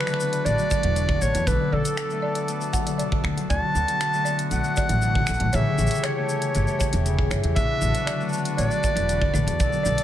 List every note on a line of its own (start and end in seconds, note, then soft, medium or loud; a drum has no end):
0.00 0.83 D3 loud
0.00 0.57 F#3 medium
0.00 1.45 D4 medium
0.00 1.45 F#4 medium
0.00 0.47 B4 loud
0.00 1.45 B4 medium
0.00 finger snap medium
0.07 0.45 A3 loud
0.07 finger snap medium
0.07 shaker soft
0.14 finger snap soft
0.20 2.23 B3 medium
0.20 shaker medium
0.33 closed hi-hat medium
0.33 shaker soft
0.45 0.53 A1 medium
0.45 2.11 A3 medium
0.45 0.59 D5 medium
0.45 1.23 D5 loud
0.45 closed hi-hat soft
0.45 shaker soft
0.58 0.88 F#3 medium
0.58 shaker soft
0.71 kick loud
0.71 shaker medium
0.83 1.15 E1 loud
0.83 1.00 D3 medium
0.83 closed hi-hat medium
0.96 1.26 B2 loud
0.96 1.20 D5 medium
0.96 closed hi-hat soft
0.96 shaker soft
1.09 kick loud
1.21 1.30 A1 medium
1.21 1.51 D3 loud
1.21 1.49 C#5 loud
1.21 kick medium
1.21 shaker medium
1.35 1.43 E2 loud
1.35 1.51 F#3 medium
1.35 closed hi-hat medium
1.35 shaker soft
1.47 1.55 B1 loud
1.47 1.77 B2 medium
1.47 5.50 B3 medium
1.47 3.49 A4 medium
1.47 1.74 B4 loud
1.47 3.48 D5 medium
1.47 kick loud
1.47 closed hi-hat soft
1.47 shaker soft
1.72 1.80 B1 loud
1.72 2.86 D3 medium
1.72 2.74 A4 medium
1.72 1.86 D5 medium
1.85 2.60 F#3 medium
1.85 closed hi-hat medium
1.85 shaker medium
1.97 finger snap medium
1.97 closed hi-hat soft
1.97 shaker soft
2.10 2.48 A3 medium
2.10 shaker soft
2.22 4.26 B3 medium
2.22 2.47 D5 medium
2.35 closed hi-hat medium
2.35 shaker soft
2.48 4.14 A3 medium
2.48 closed hi-hat soft
2.48 shaker soft
2.61 2.91 F#3 medium
2.61 shaker soft
2.73 2.97 F#5 medium
2.73 kick loud
2.73 shaker medium
2.87 3.04 D3 medium
2.87 closed hi-hat medium
2.87 shaker soft
2.98 3.29 B2 loud
2.98 3.23 D5 medium
2.98 closed hi-hat soft
2.98 shaker soft
3.12 kick loud
3.24 3.32 D2 medium
3.24 3.55 D3 loud
3.24 finger snap medium
3.24 kick medium
3.38 3.55 F#3 medium
3.38 closed hi-hat medium
3.38 shaker soft
3.50 3.58 D2 loud
3.50 3.80 B2 loud
3.50 5.51 D3 medium
3.50 5.51 F#4 medium
3.50 3.74 D5 medium
3.50 4.48 A5 loud
3.50 kick loud
3.50 closed hi-hat soft
3.50 shaker soft
3.75 3.83 D2 loud
3.75 4.89 D3 loud
3.75 shaker medium
3.88 4.64 F#3 medium
3.88 closed hi-hat medium
3.88 shaker soft
4.01 finger snap medium
4.01 closed hi-hat soft
4.01 shaker soft
4.14 4.51 A3 loud
4.14 shaker soft
4.25 7.37 B3 loud
4.25 4.40 D5 medium
4.25 shaker medium
4.39 closed hi-hat medium
4.39 shaker soft
4.51 4.60 B1 medium
4.51 6.17 A3 medium
4.51 5.57 F#5 loud
4.51 closed hi-hat soft
4.51 shaker soft
4.64 4.94 F#3 medium
4.64 shaker soft
4.76 5.01 D5 medium
4.76 kick loud
4.76 shaker medium
4.89 5.21 A1 loud
4.89 5.07 D3 medium
4.89 closed hi-hat medium
4.89 shaker soft
5.02 5.33 B2 loud
5.02 shaker soft
5.15 kick loud
5.27 5.37 B1 medium
5.27 5.58 D3 loud
5.27 finger snap medium
5.27 kick medium
5.27 shaker medium
5.40 5.49 A1 loud
5.40 5.58 F#3 medium
5.40 closed hi-hat medium
5.53 5.62 A1 loud
5.53 7.04 C#3 loud
5.53 7.55 A3 medium
5.53 7.55 G4 medium
5.53 5.67 C#5 medium
5.53 7.55 C#5 medium
5.53 6.07 E5 loud
5.53 kick medium
5.53 closed hi-hat soft
5.53 shaker soft
5.78 5.87 A1 loud
5.78 6.92 E3 loud
5.78 shaker medium
5.87 shaker medium
5.91 6.66 G3 medium
5.91 closed hi-hat medium
5.91 shaker soft
5.95 shaker soft
6.03 6.28 C#5 medium
6.03 7.06 C#5 medium
6.03 finger snap medium
6.03 closed hi-hat soft
6.03 shaker soft
6.17 6.54 A3 loud
6.29 7.88 C#4 loud
6.29 shaker medium
6.42 closed hi-hat medium
6.42 shaker soft
6.55 6.63 G1 medium
6.55 8.20 A3 loud
6.55 closed hi-hat soft
6.55 shaker soft
6.67 7.11 G3 medium
6.67 shaker soft
6.79 6.94 C#5 medium
6.79 kick loud
6.79 shaker medium
6.93 7.24 E1 loud
6.93 7.11 E3 medium
6.93 closed hi-hat medium
6.93 shaker soft
7.06 7.61 C#3 loud
7.06 closed hi-hat soft
7.06 shaker soft
7.19 kick medium
7.31 7.39 G1 medium
7.31 7.61 E3 loud
7.31 7.55 C#5 medium
7.31 finger snap medium
7.31 kick medium
7.31 shaker medium
7.44 7.52 E2 loud
7.44 7.61 G3 medium
7.44 closed hi-hat medium
7.56 7.65 A1 loud
7.56 7.87 B2 loud
7.56 9.57 D4 medium
7.56 9.58 F#4 medium
7.56 9.57 B4 medium
7.56 8.28 E5 loud
7.56 kick loud
7.56 closed hi-hat soft
7.56 shaker soft
7.81 7.90 A1 loud
7.81 8.96 D3 loud
7.81 shaker medium
7.95 8.70 F#3 medium
7.95 closed hi-hat medium
7.95 shaker soft
8.06 8.21 D5 medium
8.06 finger snap medium
8.06 closed hi-hat soft
8.06 shaker soft
8.20 8.58 A3 loud
8.20 shaker soft
8.29 shaker soft
8.33 10.04 B3 loud
8.33 shaker medium
8.38 shaker soft
8.45 closed hi-hat medium
8.45 shaker soft
8.57 8.66 A1 medium
8.57 10.04 A3 medium
8.57 8.82 D5 medium
8.57 9.30 D5 loud
8.57 closed hi-hat soft
8.57 shaker soft
8.71 9.01 F#3 medium
8.71 shaker soft
8.84 kick loud
8.84 shaker medium
8.96 9.27 E1 loud
8.96 9.14 D3 medium
8.96 closed hi-hat medium
8.96 shaker soft
9.09 9.39 B2 loud
9.09 closed hi-hat soft
9.09 shaker soft
9.21 kick loud
9.33 9.42 A1 medium
9.33 9.65 D3 loud
9.33 9.49 D5 medium
9.33 10.04 D5 loud
9.33 kick medium
9.33 shaker medium
9.47 9.55 E2 loud
9.47 9.65 F#3 medium
9.47 closed hi-hat medium
9.47 shaker soft
9.60 9.68 B1 loud
9.60 9.90 B2 loud
9.60 10.04 B3 medium
9.60 10.04 A4 medium
9.60 10.04 D5 medium
9.60 kick loud
9.60 closed hi-hat soft
9.60 shaker soft
9.73 shaker soft
9.83 9.94 B1 loud
9.83 10.04 D3 loud
9.83 10.04 D5 medium
9.83 shaker medium
9.98 10.04 F#3 medium
9.98 closed hi-hat medium
9.98 shaker soft